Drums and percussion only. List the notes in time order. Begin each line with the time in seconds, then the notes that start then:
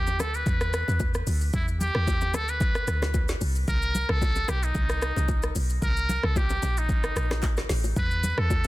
0.07 low bongo, shaker
0.20 cross-stick, low bongo, shaker
0.34 shaker
0.46 kick, low conga, shaker
0.61 cross-stick, shaker
0.73 cross-stick, shaker
0.88 low bongo, shaker
1.00 kick, high bongo, shaker
1.14 cross-stick, shaker
1.27 open hi-hat, high bongo, shaker
1.41 shaker
1.53 kick, low conga, shaker
1.68 shaker
1.81 low conga, shaker
1.95 cross-stick
2.07 kick, high bongo, shaker
2.21 low bongo, shaker
2.34 cross-stick, low bongo, shaker
2.48 shaker
2.60 kick, low conga, shaker
2.75 cross-stick, shaker
2.88 cross-stick, shaker
3.02 cross-stick, snare, low bongo, shaker
3.14 kick, high bongo, shaker
3.28 snare, shaker
3.41 open hi-hat, high bongo, shaker
3.55 shaker
3.68 kick, low conga, shaker
3.82 shaker
3.95 low conga, shaker
4.09 cross-stick
4.22 kick, high bongo, shaker
4.35 low bongo, shaker
4.48 cross-stick, low bongo, shaker
4.63 shaker
4.75 kick, low conga, shaker
4.89 cross-stick, shaker
5.02 cross-stick, shaker
5.16 low bongo, shaker
5.28 kick, high bongo, shaker
5.43 cross-stick, shaker
5.56 open hi-hat, high bongo, shaker
5.70 shaker
5.82 kick, low conga, shaker
5.97 shaker
6.09 low conga, shaker
6.23 cross-stick
6.36 kick, high bongo, shaker
6.50 low bongo, shaker
6.62 low bongo, shaker
6.77 shaker
6.89 kick, low conga, shaker
7.04 cross-stick, shaker
7.16 cross-stick, shaker
7.31 cross-stick, snare, low bongo, shaker
7.43 kick, clap, high bongo, shaker
7.57 cross-stick, snare, shaker
7.69 snare, open hi-hat, shaker
7.84 high bongo, shaker
7.96 kick, low conga, shaker
8.11 shaker
8.24 low conga, shaker
8.38 cross-stick
8.50 kick, high bongo, shaker